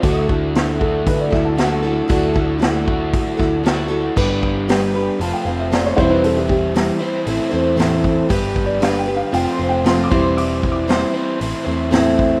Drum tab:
CC |--------|--------|x-------|--------|
HH |o-o-o-o-|o-o-o-o-|--o-o-o-|o-o-o-o-|
SD |--o--oo-|--o--oo-|--o---o-|--o---o-|
BD |oo-ooo--|oo-ooo--|oo-----o|-o-----o|

CC |--------|--------|
HH |o-o-o-o-|o-o-o-o-|
SD |--o---o-|--o---o-|
BD |oo-----o|-o-----o|